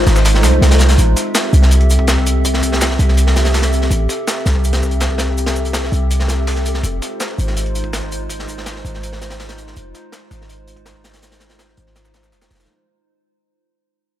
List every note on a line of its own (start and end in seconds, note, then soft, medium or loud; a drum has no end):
0.07 0.45 G#1 medium
0.07 snare loud
0.07 snare medium
0.07 closed hi-hat medium
0.07 shaker medium
0.16 snare loud
0.16 snare soft
0.16 shaker medium
0.25 snare loud
0.25 closed hi-hat medium
0.25 swell medium
0.25 shaker medium
0.34 snare medium
0.43 0.60 C2 loud
0.43 snare soft
0.43 snare loud
0.43 closed hi-hat medium
0.43 shaker medium
0.54 kick medium
0.62 0.97 C2 medium
0.62 snare medium
0.62 closed hi-hat medium
0.71 snare loud
0.71 closed hi-hat medium
0.79 snare loud
0.79 closed hi-hat medium
0.79 shaker medium
0.89 snare loud
0.89 closed hi-hat medium
0.98 1.15 A1 medium
0.98 kick loud
0.98 closed hi-hat medium
0.98 shaker medium
1.16 kick medium
1.16 snare soft
1.16 closed hi-hat medium
1.16 shaker medium
1.35 snare loud
1.35 closed hi-hat medium
1.35 shaker medium
1.53 2.98 C2 medium
1.53 closed hi-hat medium
1.53 shaker medium
1.62 snare soft
1.71 closed hi-hat medium
1.71 shaker medium
1.81 closed hi-hat soft
1.90 closed hi-hat medium
1.90 shaker medium
1.99 kick medium
2.07 snare loud
2.07 closed hi-hat medium
2.07 shaker medium
2.18 kick medium
2.26 closed hi-hat medium
2.26 shaker medium
2.45 kick loud
2.45 closed hi-hat medium
2.45 shaker medium
2.54 snare soft
2.63 kick medium
2.63 closed hi-hat medium
2.63 shaker medium
2.72 snare medium
2.81 snare loud
2.81 closed hi-hat medium
2.81 shaker medium
2.90 snare medium
2.99 3.89 C2 medium
2.99 kick medium
2.99 snare medium
2.99 closed hi-hat medium
2.99 shaker medium
3.08 snare soft
3.17 closed hi-hat medium
3.17 shaker medium
3.27 snare medium
3.36 snare loud
3.36 closed hi-hat medium
3.36 shaker medium
3.45 snare loud
3.45 closed hi-hat medium
3.54 snare medium
3.54 snare loud
3.54 closed hi-hat medium
3.54 open hi-hat medium
3.62 snare loud
3.62 closed hi-hat medium
3.62 closed hi-hat soft
3.73 closed hi-hat medium
3.73 shaker medium
3.81 snare soft
3.91 4.07 A1 loud
3.91 kick loud
3.91 closed hi-hat medium
3.91 shaker medium
4.09 kick medium
4.09 snare soft
4.09 closed hi-hat medium
4.09 shaker medium
4.27 snare loud
4.27 closed hi-hat medium
4.27 shaker medium
4.46 5.91 C2 medium
4.46 snare medium
4.46 closed hi-hat medium
4.46 shaker medium
4.55 kick medium
4.64 closed hi-hat medium
4.64 shaker medium
4.73 snare loud
4.73 closed hi-hat medium
4.73 closed hi-hat soft
4.83 kick medium
4.83 shaker medium
4.91 closed hi-hat medium
5.00 snare loud
5.00 closed hi-hat medium
5.00 shaker medium
5.10 kick medium
5.18 snare loud
5.18 closed hi-hat medium
5.18 shaker medium
5.37 closed hi-hat medium
5.37 shaker medium
5.46 snare loud
5.46 closed hi-hat medium
5.56 shaker medium
5.65 closed hi-hat medium
5.73 snare loud
5.73 closed hi-hat medium
5.73 shaker medium
5.84 snare medium
5.92 6.82 C2 medium
5.92 kick medium
5.92 closed hi-hat medium
5.92 shaker medium
6.11 closed hi-hat medium
6.11 shaker medium
6.20 snare medium
6.28 snare medium
6.28 closed hi-hat medium
6.28 shaker medium
6.47 snare loud
6.47 closed hi-hat medium
6.47 open hi-hat medium
6.55 snare soft
6.55 closed hi-hat soft
6.66 closed hi-hat medium
6.66 shaker medium
6.74 snare soft
6.83 7.00 F1 medium
6.83 kick medium
6.83 closed hi-hat medium
6.83 shaker medium
7.02 kick medium
7.02 snare soft
7.02 closed hi-hat medium
7.02 shaker medium
7.20 snare loud
7.20 closed hi-hat medium
7.20 shaker medium
7.38 8.83 G#1 medium
7.38 closed hi-hat medium
7.38 shaker medium
7.47 snare soft
7.57 closed hi-hat medium
7.57 shaker medium
7.66 closed hi-hat soft
7.75 closed hi-hat medium
7.75 shaker medium
7.84 kick medium
7.93 snare loud
7.93 closed hi-hat medium
7.93 shaker medium
8.03 kick medium
8.12 closed hi-hat medium
8.12 shaker medium
8.30 kick loud
8.30 closed hi-hat medium
8.30 shaker medium
8.39 snare soft
8.48 kick medium
8.48 closed hi-hat medium
8.48 shaker medium
8.58 snare soft
8.66 snare loud
8.66 closed hi-hat medium
8.66 shaker medium
8.76 snare soft
8.85 9.75 G#1 medium
8.85 kick medium
8.85 snare medium
8.85 closed hi-hat medium
8.85 shaker medium
8.94 snare soft
9.03 closed hi-hat medium
9.03 shaker medium
9.12 snare medium
9.22 snare loud
9.22 closed hi-hat medium
9.22 shaker medium
9.30 snare loud
9.30 closed hi-hat medium
9.40 snare loud
9.40 snare medium
9.40 closed hi-hat medium
9.40 open hi-hat medium
9.49 snare loud
9.49 closed hi-hat medium
9.49 closed hi-hat soft
9.58 closed hi-hat medium
9.58 shaker medium
9.67 snare soft
9.76 9.93 F1 medium
9.76 kick medium
9.76 closed hi-hat medium
9.76 shaker medium
9.95 kick medium
9.95 snare soft
9.95 closed hi-hat medium
9.95 shaker medium
10.12 snare loud
10.12 closed hi-hat medium
10.12 shaker medium
10.31 11.76 G#1 medium
10.31 snare medium
10.31 closed hi-hat medium
10.31 shaker medium
10.41 snare soft
10.49 closed hi-hat medium
10.49 shaker medium
10.67 closed hi-hat medium
10.67 shaker medium
10.76 kick medium
10.76 closed hi-hat soft
10.86 snare loud
10.86 closed hi-hat medium
10.86 shaker medium
10.95 kick medium
11.04 snare loud
11.04 closed hi-hat medium
11.04 shaker medium
11.13 snare medium
11.13 closed hi-hat medium
11.22 snare medium
11.22 closed hi-hat medium
11.22 shaker medium
11.31 snare medium
11.31 closed hi-hat medium
11.40 snare medium
11.40 closed hi-hat medium
11.40 shaker medium
11.49 snare loud
11.49 closed hi-hat medium
11.59 snare loud
11.59 closed hi-hat medium
11.59 shaker medium
11.68 snare soft
11.77 12.34 G#1 medium
11.77 kick medium
11.77 snare soft
11.77 closed hi-hat medium
11.77 shaker medium
11.87 snare soft
11.96 snare loud
11.96 snare medium
11.96 closed hi-hat medium
11.96 shaker medium
12.05 snare medium
12.05 shaker medium
12.14 snare medium
12.14 closed hi-hat medium
12.14 shaker medium
12.23 snare medium
12.23 shaker medium
12.32 12.49 F1 medium
12.32 snare loud
12.32 closed hi-hat medium
12.32 shaker medium
12.41 snare medium
12.41 snare loud
12.41 closed hi-hat medium
12.41 shaker medium
12.51 12.67 F1 medium
12.51 snare medium
12.51 snare loud
12.51 closed hi-hat medium
12.51 shaker medium
12.55 snare medium
12.55 closed hi-hat medium
12.60 snare medium
12.60 closed hi-hat medium
12.60 shaker medium
12.64 snare medium
12.64 closed hi-hat medium